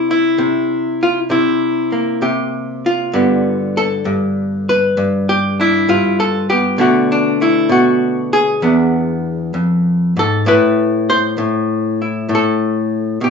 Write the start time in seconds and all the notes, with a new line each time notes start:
Already playing: C3
0.11 E4
0.38 C3
1.03 F4
1.30 C3 E4
1.92 A#3
2.22 C3 G4
2.86 F4
3.13 G2 D3 B3
3.77 A4
4.05 G2
4.69 B4
4.97 G2
5.29 G4
5.60 D4 E4
5.89 G2 F4
6.20 A4
6.50 B3 G4
6.78 B2 D3 A3 D4 F#4
7.12 D4
7.41 A3 E4
7.69 B2 F#4
8.33 G#4
8.62 E2 B3 D4
9.54 F2
10.17 G#2 A4
10.46 A2 A3 E4 B4
11.10 C5
11.38 A2
12.02 E4
12.29 A2
12.35 A4
13.21 B2 G4